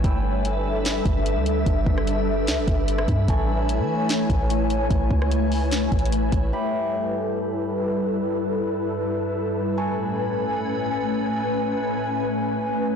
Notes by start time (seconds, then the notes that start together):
0.04 G1 G3 D4 A4 B4 E5 G5 E6, kick, closed hi-hat
0.45 closed hi-hat
0.85 snare, closed hi-hat
1.05 G1, kick, closed hi-hat
1.26 closed hi-hat
1.36 D2
1.46 closed hi-hat
1.66 G1, kick, closed hi-hat
1.86 G1, kick
1.98 cross-stick
2.07 closed hi-hat
2.47 D2, snare, closed hi-hat
2.57 G1
2.68 G1, kick, closed hi-hat
2.88 closed hi-hat
2.98 cross-stick
3.08 G2, kick, closed hi-hat
3.28 A1 A3 E4 A4 C#5 G#5 C#6, kick, closed hi-hat
3.69 closed hi-hat
3.79 E3
4.09 snare, closed hi-hat
4.30 A1, kick, closed hi-hat
4.50 closed hi-hat
4.70 closed hi-hat
4.90 A1, kick, closed hi-hat
5.11 C#2, kick
5.22 cross-stick
5.31 closed hi-hat
5.52 open hi-hat
5.71 snare, closed hi-hat
5.92 A1, kick, closed hi-hat
5.99 closed hi-hat
6.05 closed hi-hat
6.12 closed hi-hat
6.32 A1, kick, closed hi-hat
6.53 G2 G3 E4 G4 A4 B4 E5 B5
9.77 A2 A3 C#4 A4 B4 G#5 C#6